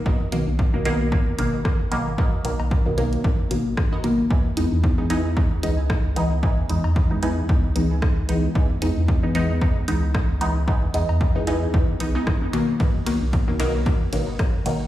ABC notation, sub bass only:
X:1
M:4/4
L:1/16
Q:"Swing 16ths" 1/4=113
K:C#dor
V:1 name="Sub bass" clef=bass
G,,, z B,,, B,,,6 z G,,,6- | G,,, z B,,, B,,,4 z G,,,6- G,,, z | C,, z E,, E,,6 z C,,6- | C,, z E,, E,,4 z C,,6- C,, z |
C,, z E,, E,,6 z C,,6- | C,, z E,, E,,4 z G,,, z B,,, z G,,, z3 | G,,, z B,,, B,,,6 z G,,,6 |]